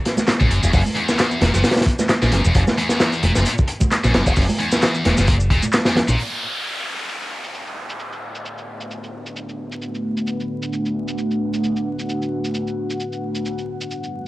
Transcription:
0.05 snare soft
0.05 closed hi-hat medium
0.17 snare soft
0.17 high conga medium
0.17 shaker medium
0.28 snare loud
0.28 clap loud
0.28 closed hi-hat medium
0.28 shaker medium
0.40 0.48 A#1 medium
0.40 0.62 F#2 medium
0.40 kick medium
0.40 shaker soft
0.50 0.59 F#1 medium
0.50 closed hi-hat medium
0.63 0.70 E1 medium
0.63 0.72 E2 loud
0.63 shaker medium
0.73 0.82 F#1 loud
0.73 0.78 F#2 loud
0.73 kick loud
0.73 open hi-hat medium
0.73 shaker medium
0.85 high conga medium
0.85 shaker soft
0.95 1.40 E2 loud
0.95 closed hi-hat medium
1.09 snare medium
1.09 shaker medium
1.19 snare loud
1.19 clap loud
1.19 closed hi-hat medium
1.19 shaker soft
1.31 shaker soft
1.41 1.50 E1 medium
1.41 1.49 A#2 loud
1.41 snare medium
1.41 closed hi-hat medium
1.41 high conga medium
1.54 1.61 F#1 medium
1.54 1.63 A#2 medium
1.54 snare soft
1.54 low conga medium
1.54 shaker medium
1.64 1.69 A#2 loud
1.64 snare medium
1.64 closed hi-hat medium
1.64 shaker soft
1.71 snare loud
1.71 closed hi-hat medium
1.76 snare medium
1.76 closed hi-hat medium
1.76 shaker soft
1.81 snare medium
1.81 closed hi-hat medium
1.86 kick medium
1.86 closed hi-hat medium
1.99 snare soft
1.99 high conga loud
1.99 shaker medium
2.09 snare loud
2.09 clap loud
2.09 closed hi-hat medium
2.09 shaker medium
2.22 2.29 A#1 medium
2.22 2.44 F#2 medium
2.22 snare soft
2.22 shaker soft
2.32 2.41 F#1 medium
2.32 snare soft
2.32 closed hi-hat medium
2.32 low conga medium
2.45 2.52 E1 medium
2.45 2.54 E2 loud
2.45 shaker medium
2.55 2.64 F#1 loud
2.55 2.60 F#2 loud
2.55 kick loud
2.55 closed hi-hat medium
2.55 shaker medium
2.67 snare soft
2.67 high conga medium
2.67 shaker soft
2.78 3.22 E2 loud
2.78 closed hi-hat medium
2.89 snare medium
2.89 shaker medium
3.00 snare loud
3.00 clap loud
3.00 closed hi-hat medium
3.00 shaker soft
3.12 closed hi-hat soft
3.12 shaker soft
3.23 3.32 E1 medium
3.23 3.31 A#2 loud
3.23 closed hi-hat medium
3.23 high conga medium
3.35 3.43 F#1 medium
3.35 3.45 A#2 medium
3.35 snare soft
3.35 shaker medium
3.46 3.51 A#2 loud
3.46 closed hi-hat medium
3.46 shaker medium
3.58 kick loud
3.58 shaker soft
3.68 closed hi-hat medium
3.80 kick medium
3.80 high conga medium
3.80 shaker medium
3.91 snare soft
3.91 clap loud
3.91 closed hi-hat medium
3.91 shaker medium
4.04 4.11 A#1 medium
4.04 4.25 F#2 medium
4.04 snare soft
4.04 shaker soft
4.14 4.23 F#1 medium
4.14 snare loud
4.14 closed hi-hat medium
4.26 4.33 E1 loud
4.26 4.36 E2 loud
4.26 kick medium
4.26 shaker medium
4.36 4.45 F#1 loud
4.36 4.42 F#2 loud
4.36 kick loud
4.36 open hi-hat medium
4.36 shaker medium
4.49 high conga medium
4.49 shaker soft
4.59 5.04 E2 loud
4.59 closed hi-hat medium
4.72 snare medium
4.72 shaker medium
4.82 snare loud
4.82 clap loud
4.82 closed hi-hat medium
4.82 shaker soft
4.95 shaker soft
5.05 5.14 E1 medium
5.05 5.13 A#2 loud
5.05 snare medium
5.05 closed hi-hat medium
5.05 high conga medium
5.17 5.50 F#1 medium
5.17 5.27 A#2 medium
5.17 snare soft
5.17 low conga medium
5.17 shaker medium
5.28 5.33 A#2 loud
5.28 kick loud
5.28 closed hi-hat medium
5.28 shaker medium
5.40 shaker soft
5.50 5.59 E1 medium
5.50 5.63 A#2 medium
5.50 kick medium
5.50 closed hi-hat medium
5.63 high conga medium
5.63 shaker medium
5.73 snare medium
5.73 clap loud
5.73 closed hi-hat medium
5.73 shaker medium
5.85 5.96 F#2 medium
5.85 snare loud
5.85 closed hi-hat medium
5.85 shaker soft
5.95 snare loud
5.95 closed hi-hat medium
5.95 low conga medium
6.08 6.15 A#1 medium
6.08 6.18 A#2 medium
6.08 shaker medium
6.18 13.42 A3 medium
6.18 13.42 D4 medium
6.18 13.42 B4 medium
6.18 14.28 F#5 medium
6.18 downlifter medium
6.18 shaker medium
6.31 shaker soft
6.53 shaker medium
6.63 shaker soft
6.76 shaker soft
6.99 shaker medium
7.09 shaker medium
7.21 shaker soft
7.44 shaker medium
7.55 shaker medium
7.67 shaker soft
7.90 shaker medium
7.99 shaker medium
8.12 shaker soft
8.35 shaker medium
8.45 shaker soft
8.58 shaker soft
8.81 shaker medium
8.91 shaker medium
9.04 shaker soft
9.26 shaker medium
9.36 shaker medium
9.49 shaker soft
9.72 shaker medium
9.82 shaker medium
9.95 shaker soft
10.17 shaker medium
10.27 shaker soft
10.40 shaker soft
10.62 shaker medium
10.73 shaker medium
10.86 shaker soft
11.08 shaker medium
11.18 shaker medium
11.31 shaker soft
11.54 shaker medium
11.64 shaker soft
11.76 shaker soft
11.99 shaker medium
12.09 shaker soft
12.22 shaker soft
12.44 shaker medium
12.54 shaker soft
12.67 shaker soft
12.90 shaker medium
13.00 shaker soft
13.13 shaker soft
13.35 shaker medium
13.45 14.28 G3 medium
13.45 14.28 E4 medium
13.45 14.28 A#4 medium
13.45 shaker soft
13.58 shaker soft
13.81 shaker medium
13.91 shaker soft
14.04 shaker soft

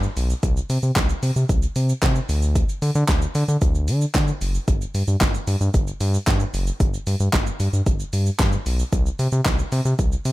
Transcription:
0.03 shaker soft
0.17 0.34 B1 medium
0.17 open hi-hat medium
0.17 shaker medium
0.30 shaker medium
0.43 0.60 C2 loud
0.43 kick loud
0.43 closed hi-hat medium
0.43 shaker medium
0.57 shaker medium
0.70 0.78 C3 loud
0.70 open hi-hat medium
0.70 shaker medium
0.83 0.91 C3 medium
0.83 shaker medium
0.96 1.13 C2 loud
0.96 kick loud
0.96 snare loud
0.96 clap loud
0.96 closed hi-hat medium
0.96 shaker medium
1.09 shaker medium
1.23 1.31 C3 loud
1.23 open hi-hat medium
1.23 shaker medium
1.36 1.45 C3 loud
1.36 shaker medium
1.49 1.67 C2 loud
1.49 kick loud
1.49 closed hi-hat medium
1.49 shaker medium
1.62 shaker medium
1.76 1.93 C3 loud
1.76 open hi-hat medium
1.76 shaker medium
1.89 shaker medium
2.02 2.20 C3 loud
2.02 kick loud
2.02 snare loud
2.02 clap loud
2.02 closed hi-hat medium
2.02 shaker medium
2.15 shaker soft
2.29 2.63 D2 loud
2.29 open hi-hat medium
2.29 shaker medium
2.42 shaker medium
2.55 kick loud
2.55 closed hi-hat medium
2.55 shaker loud
2.69 shaker medium
2.82 2.91 D3 loud
2.82 open hi-hat medium
2.82 shaker medium
2.95 3.04 D3 loud
2.95 shaker medium
3.09 3.26 D2 loud
3.09 kick loud
3.09 snare loud
3.09 clap loud
3.09 closed hi-hat medium
3.09 shaker medium
3.22 shaker medium
3.35 3.44 D3 loud
3.35 open hi-hat medium
3.35 shaker medium
3.48 3.57 D3 loud
3.48 shaker medium
3.61 3.90 D2 loud
3.61 kick loud
3.61 closed hi-hat medium
3.61 shaker medium
3.75 shaker medium
3.88 4.05 D3 loud
3.88 open hi-hat loud
3.88 shaker medium
4.01 shaker medium
4.14 4.32 D3 loud
4.14 kick loud
4.14 snare loud
4.14 clap loud
4.14 closed hi-hat medium
4.14 shaker medium
4.28 shaker soft
4.41 4.58 F#1 loud
4.41 open hi-hat medium
4.41 shaker medium
4.55 shaker medium
4.68 4.85 G1 loud
4.68 kick loud
4.68 closed hi-hat medium
4.68 shaker medium
4.81 shaker medium
4.94 5.03 G2 loud
4.94 open hi-hat medium
4.94 shaker medium
5.07 5.16 G2 loud
5.07 shaker medium
5.21 5.38 G1 loud
5.21 kick loud
5.21 snare loud
5.21 clap loud
5.21 closed hi-hat medium
5.21 shaker medium
5.34 shaker medium
5.47 5.56 G2 loud
5.47 open hi-hat medium
5.47 shaker medium
5.61 5.69 G2 loud
5.61 shaker medium
5.74 5.91 G1 loud
5.74 kick loud
5.74 closed hi-hat medium
5.74 shaker medium
5.87 shaker medium
6.00 6.18 G2 loud
6.00 open hi-hat medium
6.00 shaker medium
6.14 shaker medium
6.27 6.44 G2 loud
6.27 kick loud
6.27 snare loud
6.27 clap loud
6.27 closed hi-hat medium
6.27 shaker medium
6.40 shaker soft
6.54 6.71 F#1 medium
6.54 open hi-hat medium
6.54 shaker medium
6.67 shaker medium
6.80 6.97 G1 loud
6.80 kick loud
6.80 closed hi-hat medium
6.80 shaker medium
6.94 shaker medium
7.07 7.15 G2 loud
7.07 open hi-hat medium
7.07 shaker medium
7.20 7.29 G2 loud
7.20 shaker medium
7.33 7.51 G1 loud
7.33 kick loud
7.33 snare loud
7.33 clap loud
7.33 closed hi-hat medium
7.33 shaker medium
7.47 shaker medium
7.60 7.68 G2 loud
7.60 open hi-hat medium
7.60 shaker medium
7.73 7.82 G2 loud
7.73 shaker medium
7.86 8.04 G1 loud
7.86 kick loud
7.86 closed hi-hat medium
7.86 shaker medium
8.00 shaker medium
8.13 8.30 G2 loud
8.13 open hi-hat medium
8.13 shaker medium
8.26 shaker medium
8.39 8.57 G2 loud
8.39 kick loud
8.39 snare loud
8.39 clap loud
8.39 closed hi-hat medium
8.39 shaker medium
8.52 shaker soft
8.66 8.83 B1 medium
8.66 open hi-hat medium
8.66 shaker medium
8.79 shaker medium
8.93 9.10 C2 loud
8.93 kick loud
8.93 closed hi-hat medium
8.93 shaker medium
9.06 shaker medium
9.19 9.28 C3 loud
9.19 open hi-hat medium
9.19 shaker medium
9.32 9.41 C3 loud
9.32 shaker medium
9.45 9.63 C2 medium
9.45 kick loud
9.45 snare loud
9.45 clap loud
9.45 closed hi-hat medium
9.45 shaker medium
9.59 shaker medium
9.72 9.81 C3 loud
9.72 open hi-hat medium
9.72 shaker medium
9.85 9.94 C3 loud
9.85 shaker medium
9.99 10.16 C2 loud
9.99 kick loud
9.99 closed hi-hat medium
9.99 shaker medium
10.12 shaker medium
10.25 10.32 C3 loud
10.25 open hi-hat medium
10.25 shaker medium

